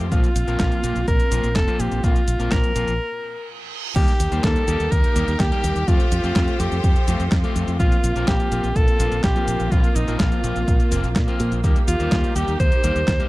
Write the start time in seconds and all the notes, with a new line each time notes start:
Already playing: F4
0.11 A#1 F3 A#3 C4 F4, kick, closed hi-hat, cabasa
0.24 closed hi-hat, cabasa
0.36 A#1, closed hi-hat, cabasa
0.47 A#1 F3 A#3 C4 A#4, closed hi-hat, cabasa
0.60 A#1, kick, snare, clap, closed hi-hat, cabasa
0.72 closed hi-hat, cabasa
0.83 A#1 F3 A#3 C4 F4, closed hi-hat, cabasa
0.96 A#1, closed hi-hat, cabasa
1.08 A#1 A#4, kick, closed hi-hat, cabasa
1.20 closed hi-hat, cabasa
1.31 A#1 F3 A#3 C4 F4, closed hi-hat, cabasa
1.44 A#1, closed hi-hat, cabasa
1.56 F1 A4, kick, snare, clap, closed hi-hat, cabasa
1.67 F3 A#3 C4 F4, closed hi-hat, cabasa
1.80 A#1 G4, closed hi-hat, cabasa
1.92 A#1, closed hi-hat, cabasa
2.03 A#1 F3 A#3 C4 F4, kick, closed hi-hat, cabasa
2.16 closed hi-hat, cabasa
2.28 A#1, closed hi-hat, cabasa
2.39 A#1 F3 A#3 C4 A#4, closed hi-hat, cabasa
2.52 A#1 A#4, kick, snare, clap, closed hi-hat, cabasa
2.64 closed hi-hat, cabasa
2.75 A#1 F3 A#3 C4 F4, closed hi-hat, cabasa
2.88 A#1, closed hi-hat, cabasa
3.00 reverse cymbal
3.96 D#2 G3 A#3 D#4 G4, kick, closed hi-hat, crash, cabasa
4.08 closed hi-hat, cabasa
4.20 D#2, closed hi-hat, cabasa
4.32 D#2 G3 A#3 D#4 C5, closed hi-hat, cabasa
4.44 D#2 A4, kick, snare, clap, closed hi-hat, cabasa
4.56 closed hi-hat, cabasa
4.68 D#2 G3 A#3 D#4 G4, closed hi-hat, cabasa
4.80 D#2, closed hi-hat, cabasa
4.92 D#2 A#4, kick, closed hi-hat, cabasa
5.04 closed hi-hat, cabasa
5.16 D#2 G3 A#3 D#4 G4, closed hi-hat, cabasa
5.28 D#2, closed hi-hat, cabasa
5.40 D#2 G4, kick, snare, clap, closed hi-hat, cabasa
5.52 G3 A#3 D#4 G4, closed hi-hat, cabasa
5.64 D#2, closed hi-hat, cabasa
5.76 D#2, closed hi-hat, cabasa
5.88 F2 F3 A3 C4 F4 G4 A4 C5, kick, closed hi-hat, cabasa
6.00 closed hi-hat, cabasa
6.12 F2, closed hi-hat, cabasa
6.24 F2 A3 C4 F4 C5, closed hi-hat, cabasa
6.36 F2, kick, snare, clap, closed hi-hat, cabasa
6.48 closed hi-hat, cabasa
6.59 F2 A3 C4 F4 G4, closed hi-hat, cabasa
6.72 F2, closed hi-hat, cabasa
6.84 F2, kick, closed hi-hat, cabasa
6.96 closed hi-hat, cabasa
7.08 F2 A3 C4 F4 G4, closed hi-hat, cabasa
7.20 F2, closed hi-hat, cabasa
7.32 F2, kick, snare, clap, closed hi-hat, cabasa
7.43 A3 C4 F4 G4, closed hi-hat, cabasa
7.56 F2, closed hi-hat, cabasa
7.68 F2, closed hi-hat, cabasa
7.80 A#1 F3 A#3 C4 F4, kick, closed hi-hat, cabasa
7.92 closed hi-hat, cabasa
8.04 A#1, closed hi-hat, cabasa
8.15 A#1 F3 A#3 C4 A#4, closed hi-hat, cabasa
8.28 A#1 G4, kick, snare, clap, closed hi-hat, cabasa
8.40 closed hi-hat, cabasa
8.52 A#1 F3 A#3 C4 F4, closed hi-hat, cabasa
8.64 A#1, closed hi-hat, cabasa
8.76 A#1 A4, kick, closed hi-hat, cabasa
8.88 closed hi-hat, cabasa
8.99 A#1 F3 A#3 C4 F4, closed hi-hat, cabasa
9.12 A#1, closed hi-hat, cabasa
9.24 A#1 G4, kick, snare, clap, closed hi-hat, cabasa
9.36 F3 A#3 C4 F4, closed hi-hat, cabasa
9.48 A#1, closed hi-hat, cabasa
9.60 A#1, closed hi-hat, cabasa
9.72 A#1 F3 A#3 C4 F4, kick, closed hi-hat, cabasa
9.84 closed hi-hat, cabasa
9.96 A#1 D#4, closed hi-hat, cabasa
10.08 A#1 F3 A#3 C4 A#4, closed hi-hat, cabasa
10.20 A#1 F4, kick, snare, clap, closed hi-hat, cabasa
10.32 closed hi-hat, cabasa
10.44 A#1 F3 A#3 C4 F4, closed hi-hat, cabasa
10.56 A#1, closed hi-hat, cabasa
10.68 A#1, kick, closed hi-hat, cabasa
10.80 closed hi-hat, cabasa
10.91 F1 F3 A#3 C4 F4, closed hi-hat, cabasa
11.04 A#1, closed hi-hat, cabasa
11.16 A#2, kick, snare, clap, closed hi-hat, cabasa
11.27 F3 A#3 C4 F4, closed hi-hat, cabasa
11.40 A#2, closed hi-hat, cabasa
11.52 A#1, closed hi-hat, cabasa
11.64 D#2 G3 A#3 D#4 G4, kick, closed hi-hat, cabasa
11.76 closed hi-hat, cabasa
11.88 D#2 F4, closed hi-hat, cabasa
12.00 D#2 G3 A#3 D#4 C5, closed hi-hat, cabasa
12.12 D#2, kick, snare, clap, closed hi-hat, cabasa
12.24 closed hi-hat, cabasa
12.35 D#2 G3 A#3 D#4 G4, closed hi-hat, cabasa
12.48 D#2, closed hi-hat, cabasa
12.60 D#2 C5, kick, closed hi-hat, cabasa
12.72 closed hi-hat, cabasa
12.84 D#2 G3 A#3 D#4 G4, closed hi-hat, cabasa
12.96 D#2, closed hi-hat, cabasa
13.08 D#2, kick, snare, clap, closed hi-hat, cabasa
13.19 G3 A#3 D#4 G4, closed hi-hat, cabasa